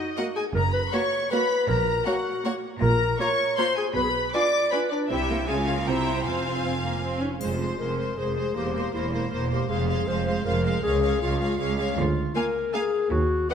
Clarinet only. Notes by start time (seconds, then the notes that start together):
Already playing: D#4
0.36 G#4
0.54 A#4
0.73 B4
0.93 C#5
1.31 B4
1.68 A#4
2.07 F#4
2.82 A#4
3.20 C#5
3.58 C5
3.77 G#4
3.96 B4
4.03 G#4
4.10 B4
4.34 D5
4.72 B4
4.91 D4
5.10 E4
5.48 G#4
5.68 F4
5.87 E4
6.26 F4
7.22 D#4
7.41 F4
7.80 A#4
8.18 G#4
8.56 G4
8.93 E4
9.50 G4
9.69 G#4
10.07 C5
10.45 A#4
10.83 G#4
11.22 F4
11.97 F4
12.35 A#4
12.74 G#4
13.11 F#4
13.50 B4